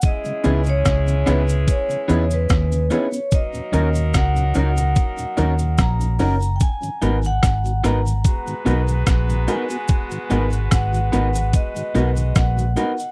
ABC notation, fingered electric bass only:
X:1
M:4/4
L:1/8
Q:"Swing 16ths" 1/4=73
K:G#m
V:1 name="Fingered electric bass" clef=bass
z C,, C,, C,, z E,, D,, z | z D,, C,, C,, z D,, A,,, F,,, | z G,,, G,,, G,,, z B,,, A,,, z | z G,,, G,,, G,,, z B,,, A,,, z |]